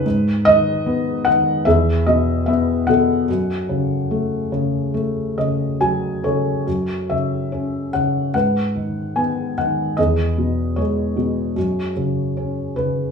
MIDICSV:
0, 0, Header, 1, 2, 480
1, 0, Start_track
1, 0, Tempo, 811908
1, 29, Time_signature, 4, 2, 24, 8
1, 2429, Tempo, 851064
1, 4349, Tempo, 826446
1, 5309, Tempo, 800000
1, 7677, End_track
2, 0, Start_track
2, 0, Title_t, "Felt piano"
2, 0, Program_c, 0, 0
2, 0, Control_c, 0, 64, 127
2, 0, Note_on_c, 0, 63, 50
2, 0, Note_on_c, 0, 71, 80
2, 34, Note_on_c, 0, 44, 50
2, 37, Control_c, 0, 64, 0
2, 151, Control_c, 0, 64, 127
2, 267, Note_on_c, 0, 75, 93
2, 276, Note_on_c, 0, 51, 47
2, 284, Note_off_c, 0, 71, 0
2, 511, Note_on_c, 0, 59, 47
2, 722, Note_off_c, 0, 63, 0
2, 737, Note_on_c, 0, 78, 83
2, 741, Note_off_c, 0, 51, 0
2, 750, Note_on_c, 0, 51, 42
2, 757, Note_off_c, 0, 75, 0
2, 961, Note_off_c, 0, 44, 0
2, 971, Note_off_c, 0, 59, 0
2, 977, Note_on_c, 0, 76, 76
2, 978, Note_off_c, 0, 51, 0
2, 985, Note_on_c, 0, 40, 54
2, 985, Note_on_c, 0, 68, 55
2, 986, Note_off_c, 0, 78, 0
2, 988, Control_c, 0, 64, 0
2, 1109, Control_c, 0, 64, 127
2, 1202, Note_off_c, 0, 76, 0
2, 1221, Note_on_c, 0, 75, 65
2, 1224, Note_on_c, 0, 47, 42
2, 1455, Note_on_c, 0, 76, 60
2, 1465, Note_on_c, 0, 59, 45
2, 1467, Note_off_c, 0, 75, 0
2, 1695, Note_off_c, 0, 47, 0
2, 1696, Note_on_c, 0, 78, 67
2, 1704, Note_off_c, 0, 76, 0
2, 1704, Note_on_c, 0, 47, 40
2, 1704, Note_on_c, 0, 69, 48
2, 1921, Note_off_c, 0, 40, 0
2, 1921, Note_off_c, 0, 68, 0
2, 1931, Note_off_c, 0, 59, 0
2, 1938, Note_off_c, 0, 47, 0
2, 1946, Note_on_c, 0, 42, 50
2, 1950, Control_c, 0, 64, 0
2, 2061, Control_c, 0, 64, 127
2, 2182, Note_on_c, 0, 49, 44
2, 2429, Note_on_c, 0, 57, 44
2, 2653, Note_off_c, 0, 49, 0
2, 2661, Note_on_c, 0, 49, 39
2, 2890, Note_off_c, 0, 57, 0
2, 2898, Note_on_c, 0, 57, 46
2, 3137, Note_off_c, 0, 49, 0
2, 3144, Note_on_c, 0, 75, 53
2, 3145, Note_on_c, 0, 49, 41
2, 3360, Note_off_c, 0, 78, 0
2, 3363, Note_off_c, 0, 69, 0
2, 3370, Note_off_c, 0, 75, 0
2, 3385, Note_on_c, 0, 54, 45
2, 3387, Note_on_c, 0, 80, 52
2, 3626, Note_off_c, 0, 49, 0
2, 3628, Note_on_c, 0, 69, 43
2, 3632, Note_on_c, 0, 73, 53
2, 3635, Note_on_c, 0, 49, 39
2, 3850, Note_off_c, 0, 57, 0
2, 3851, Note_off_c, 0, 42, 0
2, 3851, Note_off_c, 0, 80, 0
2, 3858, Note_off_c, 0, 54, 0
2, 3867, Note_off_c, 0, 49, 0
2, 3872, Note_on_c, 0, 42, 39
2, 3879, Control_c, 0, 64, 0
2, 3972, Control_c, 0, 64, 127
2, 4114, Note_on_c, 0, 76, 58
2, 4115, Note_on_c, 0, 49, 32
2, 4127, Note_off_c, 0, 73, 0
2, 4353, Note_on_c, 0, 61, 37
2, 4568, Note_off_c, 0, 69, 0
2, 4570, Note_off_c, 0, 76, 0
2, 4588, Note_off_c, 0, 49, 0
2, 4593, Note_on_c, 0, 78, 55
2, 4597, Note_on_c, 0, 49, 36
2, 4808, Note_off_c, 0, 42, 0
2, 4819, Note_off_c, 0, 61, 0
2, 4821, Note_off_c, 0, 78, 0
2, 4827, Note_off_c, 0, 49, 0
2, 4830, Note_on_c, 0, 78, 56
2, 4835, Note_on_c, 0, 71, 41
2, 4836, Note_on_c, 0, 44, 41
2, 4838, Control_c, 0, 64, 0
2, 4947, Control_c, 0, 64, 127
2, 5071, Note_on_c, 0, 51, 30
2, 5304, Note_on_c, 0, 80, 53
2, 5308, Note_on_c, 0, 59, 40
2, 5324, Note_off_c, 0, 78, 0
2, 5535, Note_off_c, 0, 80, 0
2, 5547, Note_off_c, 0, 51, 0
2, 5556, Note_on_c, 0, 51, 32
2, 5556, Note_on_c, 0, 78, 57
2, 5776, Note_off_c, 0, 44, 0
2, 5776, Note_off_c, 0, 71, 0
2, 5782, Note_off_c, 0, 59, 0
2, 5791, Note_off_c, 0, 51, 0
2, 5791, Note_on_c, 0, 75, 59
2, 5799, Note_on_c, 0, 40, 41
2, 5802, Note_on_c, 0, 68, 42
2, 5805, Control_c, 0, 64, 0
2, 5806, Note_off_c, 0, 78, 0
2, 5896, Control_c, 0, 64, 127
2, 6037, Note_on_c, 0, 47, 35
2, 6267, Note_on_c, 0, 73, 49
2, 6271, Note_off_c, 0, 68, 0
2, 6275, Note_on_c, 0, 56, 40
2, 6280, Note_on_c, 0, 68, 33
2, 6282, Note_off_c, 0, 75, 0
2, 6500, Note_off_c, 0, 47, 0
2, 6509, Note_on_c, 0, 47, 39
2, 6721, Note_off_c, 0, 40, 0
2, 6733, Note_off_c, 0, 56, 0
2, 6739, Note_off_c, 0, 47, 0
2, 6747, Note_on_c, 0, 42, 47
2, 6753, Control_c, 0, 64, 0
2, 6874, Control_c, 0, 64, 127
2, 6959, Note_off_c, 0, 73, 0
2, 6965, Note_off_c, 0, 68, 0
2, 6988, Note_on_c, 0, 49, 34
2, 7231, Note_on_c, 0, 61, 41
2, 7457, Note_off_c, 0, 49, 0
2, 7466, Note_on_c, 0, 49, 33
2, 7466, Note_on_c, 0, 71, 54
2, 7677, Note_off_c, 0, 42, 0
2, 7677, Note_off_c, 0, 49, 0
2, 7677, Note_off_c, 0, 61, 0
2, 7677, Note_off_c, 0, 71, 0
2, 7677, End_track
0, 0, End_of_file